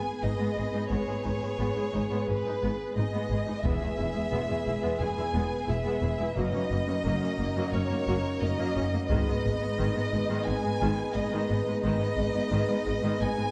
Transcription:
Already playing: B3 G#4 B4 G#5
0.22 G#1 G#2 G#3 D#4 D#5
0.38 G#2 G#3 B3
0.56 G#1 G#2 G#3 G#4
0.73 G#2 G#3 D#4
0.89 G#1 G#2 G#3 B3 C#5
1.07 G#2 G#3 G#4
1.24 G#1 G#2 G#3 D#4
1.42 G#2 G#3 G#4
1.58 G#1 G#2 G#3 B3
1.75 G#2 G#3 G#4
1.92 G#1 G#2 G#3 D#4
2.10 G#2 G#3 B3
2.27 G#1 G#2 G#3 G#4 B4
2.45 G#2 G#3 D#4
2.62 G#1 G#2 G#3 B3
2.96 G#1 G#2 G#3 D#4 D#5
3.13 G#2 G#3 B3
3.30 G#1 G#2 G#3 G#4
3.47 G#2 G#3 D#4
3.64 E1 E2 G#3 B3 G#4 B4 E5, taiko
3.80 E2 G#3 G#4
3.97 E1 E2 G#3 E4
4.15 E2 G#3 G#4
4.32 E1 E2 G#3 B3
4.50 E2 G#3 G#4
4.67 E1 E2 G#3 E4
4.82 E2 G#3 B3
5.00 E1 E2 G#3 G#4 G#5
5.17 E2 G#3 E4
5.33 E1 E2 G#3 B3
5.67 E1 E2 G#3 E4 E5
5.85 E2 G#3 B3
6.02 E1 E2 G#3 G#4
6.19 E2 G#3 E4
6.36 F#1 F#2 F#3 A#3 C#4 D#4 F#4 D#5
6.53 F#2 A#3 C#4
6.70 F#1 F#2 A#3
6.87 F#2 A#3 C#4
7.04 F#1 F#2 F#3 A#3 A#4
7.20 F#2 A#3 C#4
7.39 F#1 F#2 A#3
7.55 F#2 F#3 A#3
7.73 F#1 F#2 A#3 C#4 C#5
7.90 F#2 A#3
8.07 F#1 F#2 F#3 A#3
8.41 F#1 F#2 A#3 D#5
8.58 F#2 F#3 A#3
8.76 F#1 F#2 A#3 C#4
8.93 F#2 A#3
9.08 G#1 G#2 D#3 G#3 B3 D#4 G#4 B4 D#5, taiko
9.27 G#2 G#3 B3
9.44 G#1 G#2 G#3
9.61 G#2 G#3 B3
9.79 G#1 G#2 D#3 G#3
9.95 G#2 G#3 B3
10.12 G#1 G#2 G#3
10.30 G#2 D#3 G#3
10.46 G#1 G#2 G#3 B3 G#5
10.63 G#2 G#3
10.81 G#1 G#2 D#3 G#3
11.15 G#1 G#2 G#3 D#5
11.32 G#2 D#3 G#3
11.49 G#1 G#2 G#3 B3
11.67 G#2 G#3
11.84 G#1 G#2 D#3 G#3 D#5
12.00 G#2 G#3 B3
12.17 G#1 G#2 G#3
12.35 G#2 G#3 B3
12.52 G#1 G#2 D#3 G#3
12.68 G#2 G#3 B3
12.86 G#1 G#2 G#3
13.03 G#2 D#3 G#3
13.20 G#1 G#2 G#3 B3 G#5
13.38 G#2 G#3

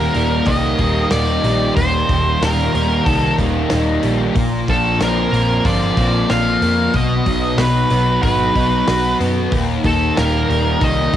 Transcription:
Already playing: D#2 D#3 G3 A#3 D#4 A#4 G5
0.14 D#1 G3 A#3, open hi-hat
0.46 C2 D#3 D#4 D#5, kick, open hi-hat
0.79 D#1 G3 A#3, kick, open hi-hat
1.11 D#1 D#3 D#4 D5, snare, open hi-hat
1.44 A#1 G3, open hi-hat
1.76 D#1 D#2 C5, kick, open hi-hat
2.09 D#1 D#3, kick, open hi-hat
2.41 D#1 G3 A#3 A#4, snare, open hi-hat
2.74 D#1 G3 A#3, open hi-hat
3.05 C2 D#3 D#4 A4, kick, open hi-hat
3.38 D#1 G3 A#3, kick, open hi-hat
3.70 D#1 D#3 D#4, snare, open hi-hat
4.03 A#1 G3, open hi-hat
4.35 A#1 A#2 D5 F5 C6, kick, open hi-hat
4.68 A#1 F3 A4, kick, open hi-hat
5.00 A#1 A#3 C4 A#4, snare, open hi-hat
5.32 A#1 A#3 C4, open hi-hat
5.65 G1 F3 F4 D5, kick, open hi-hat
5.97 A#1 A#3 C4, kick, open hi-hat
6.30 A#1 F3 F4 F5, snare, open hi-hat
6.62 F2 A#3, open hi-hat
6.92 B1 B2 D#4 B4 D#5 F#5, kick, open hi-hat
7.26 B1 F#3, kick, open hi-hat
7.58 B1 B3 D#4 B4, snare, open hi-hat
7.90 B1 B3 D#4, open hi-hat
8.22 G#1 F#3 F#4 B4, kick, open hi-hat
8.55 B1 B3 D#4, kick, open hi-hat
8.88 B1 F#3 F#4, snare, open hi-hat
9.20 F#2 B3, open hi-hat
9.51 D#1 D#2 A#3 G5, kick, open hi-hat
9.83 D#1 D#3 A4, kick, open hi-hat
10.16 D#1 G3 A#3 A#4, snare, open hi-hat
10.48 D#1 G3 A#3, open hi-hat
10.80 C2 D#3 D#4 D#5, kick, open hi-hat
11.13 D#1, open hi-hat

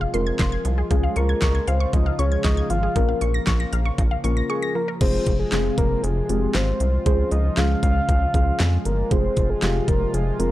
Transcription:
Already playing: C3 F3 G#3 F4 G#4
0.01 F5
0.14 F1 G#3 C4 F4 A#4 C6, closed hi-hat
0.27 G#6
0.39 F1 C6, kick, snare, clap, closed hi-hat
0.52 G#6
0.65 C2 F3, closed hi-hat
0.78 G#4
0.91 C#2 C#3 F3 G#3 C#4 F4 G#4, kick, closed hi-hat
1.03 F5
1.16 C#2 A#4 C#6, closed hi-hat
1.29 G#6
1.42 C#2 C#6, kick, snare, clap, closed hi-hat
1.55 G#6
1.68 C#2 C5 F5, closed hi-hat
1.80 C#6
1.93 C#2 F3 D#5, kick, closed hi-hat
2.06 F5
2.19 C#2 G#3 C#4 F4 G#4 C#5 C#6, closed hi-hat
2.32 G#6
2.44 C#2 D#5 C#6, kick, snare, clap, closed hi-hat
2.57 G#6
2.70 G#1 F3 F5, closed hi-hat
2.83 G#4
2.96 A#1 F3 A#3 C#4 F4 A#4, kick, closed hi-hat
3.09 F5
3.21 A#1 C#6, closed hi-hat
3.34 A#6
3.47 A#1 C#6, kick, snare, clap, closed hi-hat
3.60 A#6
3.73 A#1 F5, closed hi-hat
3.86 C#6
3.98 A#1 F3, kick, closed hi-hat
4.11 F5
4.24 A#1 A#3 C#4 F4 A#4 C#6, closed hi-hat
4.37 A#6
4.50 G#4 C#6
4.63 A#6
4.75 F3 A#4
4.88 A#4
5.01 F1 C3 F3 G#3 C4 F4 G#4 C5, kick, closed hi-hat, crash
5.26 F1, kick, closed hi-hat
5.39 G#4
5.52 F1 G#3 C4 F4 G#4, snare, clap, closed hi-hat
5.78 F1 A#4, kick, closed hi-hat
6.04 F1 G#4, closed hi-hat
6.29 F1 G#3 C4 F4 G4, closed hi-hat
6.55 G#1 C5, snare, clap, closed hi-hat
6.80 C2, closed hi-hat
7.06 C#2 C#3 F3 G#3 C#4 F4 G#4 C5, kick, closed hi-hat
7.31 C#2 D#5, closed hi-hat
7.57 C#2 G#3 C#4 F4 G#4 F5, snare, clap, closed hi-hat
7.83 C#2 F5, kick, closed hi-hat
8.09 C#2, kick, closed hi-hat
8.34 C#2 G#3 C#4 F4 G#4, kick, closed hi-hat
8.60 F2 G#4, snare, clap, closed hi-hat
8.85 G1 A#4, closed hi-hat
9.11 F1 C3 F3 G#3 C4 F4 G#4 C5, kick, closed hi-hat
9.37 F1, kick, closed hi-hat
9.50 G#4
9.62 F1 G#3 C4 F4 G4, snare, clap, closed hi-hat
9.88 F1 A#4, kick, closed hi-hat
10.14 F1 G#4, closed hi-hat
10.39 F1 G#3 C4 F4 G#4 A#4, closed hi-hat

